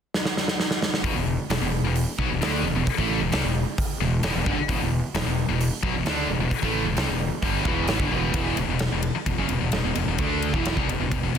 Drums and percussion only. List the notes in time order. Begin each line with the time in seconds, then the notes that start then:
0.14 snare
0.25 snare
0.37 snare
0.48 snare
0.60 snare
0.71 snare
0.82 snare
0.94 snare
1.04 kick, open hi-hat
1.50 snare, open hi-hat
1.96 open hi-hat
2.19 kick
2.42 snare, open hi-hat
2.87 kick, open hi-hat
2.98 kick
3.32 snare, open hi-hat
3.78 kick, open hi-hat
4.23 snare, open hi-hat
4.46 kick
4.69 kick, open hi-hat
5.15 snare, open hi-hat
5.61 open hi-hat
5.83 kick
6.06 snare, open hi-hat
6.51 kick, open hi-hat
6.63 kick
6.97 snare, open hi-hat
7.42 kick, open hi-hat
7.65 kick
7.87 snare, open hi-hat
8.00 kick
8.34 kick, ride
8.57 ride
8.79 snare, ride
9.03 ride
9.26 kick, ride
9.49 ride
9.72 snare, ride
9.95 ride
10.18 kick, ride
10.42 ride
10.54 kick
10.65 snare, ride
10.77 kick
10.89 ride
11.12 kick, ride
11.35 ride